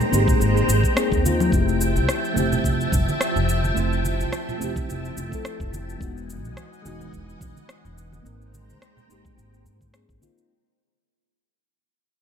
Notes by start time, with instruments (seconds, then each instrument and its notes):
Already playing: string machine G#3 C5 G5 A#5, fm electric piano A#3 C4 D#4 A#4
0.00 low conga, shaker
0.09 upright bass G#1, fm electric piano A#3 C4 D#4, high conga
0.13 fm electric piano G4, shaker
0.28 kick, low conga, shaker
0.40 upright bass G#1, shaker
0.57 shaker
0.68 upright bass G#1, shaker
0.84 kick, shaker
0.95 fm electric piano A#3 C4 D#4 G#4, cross-stick, shaker
1.12 upright bass D#2, kick, shaker
1.23 fm electric piano A#3 C4 D#4 F4, high conga, shaker
1.40 low conga, shaker
1.49 upright bass F1, fm electric piano A3 C4 E4, string machine E5 A5, kick
1.53 string machine F3, fm electric piano G4, shaker
1.69 shaker
1.81 shaker
1.96 upright bass C2, shaker
2.09 cross-stick, shaker
2.25 shaker
2.34 upright bass F1, fm electric piano A3 C4 E4, high conga, shaker
2.39 fm electric piano G4
2.52 low conga, shaker
2.64 upright bass F1, kick, shaker
2.81 shaker
2.92 upright bass F1, kick, low conga, shaker
3.09 high conga, shaker
3.21 cross-stick, shaker
3.36 upright bass F1, shaker
3.49 shaker
3.64 high conga, shaker
3.74 upright bass F1, fm electric piano A3 C4 E4, shaker
3.79 fm electric piano C5
3.93 shaker
4.05 high conga, shaker
4.20 upright bass C2, shaker
4.33 cross-stick, shaker
4.49 low conga, shaker
4.58 upright bass F1, fm electric piano A3 C4 E4, shaker
4.64 fm electric piano G4
4.76 kick, low conga, shaker
4.89 upright bass F1, shaker
5.05 shaker
5.17 upright bass F1, shaker
5.29 fm electric piano A3 C4 E4, kick, shaker
5.35 fm electric piano A4
5.45 cross-stick, shaker
5.60 upright bass F1, kick, shaker
5.74 high conga, shaker
5.90 shaker
5.98 upright bass E1, string machine E3 D#5 F#5 G#5, fm electric piano G#3 B3 D#4, kick, shaker
6.04 fm electric piano F#4
6.17 shaker
6.30 shaker
6.45 upright bass B1, shaker
6.57 cross-stick, shaker
6.73 shaker
6.82 upright bass E1, fm electric piano G#3 B3 D#4, high conga, shaker
6.88 fm electric piano F#4
7.01 low conga, shaker
7.13 upright bass E1, kick, shaker
7.29 shaker
7.41 upright bass E1, kick, low conga, shaker
7.57 high conga, shaker
7.69 cross-stick, shaker
7.85 upright bass E1, shaker
7.98 shaker
8.12 high conga, shaker
8.22 upright bass G#1, fm electric piano A#3 C4 D#4, string machine A#5
8.26 string machine G#3 C5 G5, fm electric piano A#4, shaker
8.42 shaker
8.54 high conga, shaker
8.68 upright bass D#2, shaker
8.82 cross-stick, shaker
8.97 low conga, shaker
9.06 upright bass G#1, fm electric piano A#3 C4 D#4
9.10 fm electric piano G4, shaker
9.25 kick, low conga, shaker
9.37 upright bass G#1, shaker
9.54 shaker
9.65 upright bass G#2, shaker
9.81 kick, high conga, shaker
9.92 fm electric piano A#3 C4 D#4 G#4, cross-stick, shaker
10.09 upright bass G#1, kick, shaker
10.20 fm electric piano A#3 C4 D#4 F4, high conga, shaker
10.38 shaker